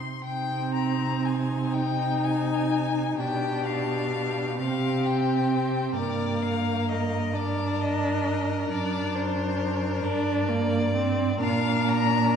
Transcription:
Already playing: C6
0.24 C3 C4 D#4 G5
0.74 A#5
1.25 G#5
1.73 D#4 G5
2.23 G#5
3.19 B2 D4 G4 G5
3.66 F5
4.59 C3 C4 G4 F5
5.05 G5
5.95 G2 A#3 A#4 D5
6.42 F5
6.89 D#5
7.33 D4 A#4 D5
7.81 D#5
8.70 F#2 D4 D5
9.15 C5
10.03 G2 D4 A#4 D5
10.48 A#3
10.95 C4
11.41 A#2 D4 A#4 F5
11.89 A#5

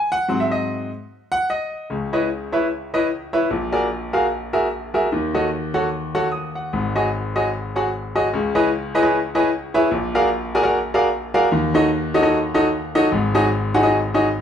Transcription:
Already playing: G#5
0.12 F#5
0.28 G#2 F#3 C4
0.40 E5
0.51 D#5
1.32 F#5
1.50 D#5
1.90 C#2 C#3
2.13 E4 B4 C#5 D#5
2.52 E4 B4 C#5 E5
2.94 E4 B4 C#5 D#5
3.33 E4 B4 C#5 E5
3.50 A#1 A#2
3.72 F#4 G#4 A#4 D5
4.13 F#4 G#4 A#4 F5
4.53 F#4 G#4 A#4 E5
4.94 F#4 G#4 A#4 E5
5.12 D#2 D#3
5.34 F#4 A4 C#5 D#5
5.74 F#4 A4 C#5 F#5
6.15 F#4 A4 C#5 F#5
6.32 D#6
6.55 F#5
6.73 G#1 G#2
6.96 F#4 G#4 C#5 D#5
7.36 F#4 G#4 C#5 D#5
7.76 F#4 G#4 C#5 F#5
8.15 F#4 G#4 C#5 D#5
8.33 C#2 C#3
8.55 E4 G#4 B4 C#5 D#5
8.95 E4 G#4 B4 C#5 D#5
9.02 E4 G#4 B4 C#5 D#5
9.35 E4 G#4 B4 C#5 D#5
9.74 E4 G#4 B4 C#5 E5
9.91 A#1 A#2
10.15 F#4 G#4 A#4 D5 F5
10.55 F#4 G#4 A#4 D5 G#5
10.63 F#4 G#4 A#4 D5 F#5
10.94 F#4 G#4 A#4 D5 F5
11.34 F#4 G#4 A#4 D5 F5
11.52 D#2 D#3
11.74 D#4 F#4 A4 C#5 D#5
12.14 D#4 F#4 A4 C#5 D#5
12.23 D#4 F#4 A4 C#5 D#5
12.54 D#4 F#4 A4 C#5 D#5
12.95 D#4 F#4 A4 C#5 D#5
13.12 G#1 G#2
13.34 D#4 F#4 G#4 C#5 D#5
13.74 D#4 F#4 G#4 C#5 F#5
13.83 D#4 F#4 G#4 C#5 D#5
14.14 D#4 F#4 G#4 C#5 D#5

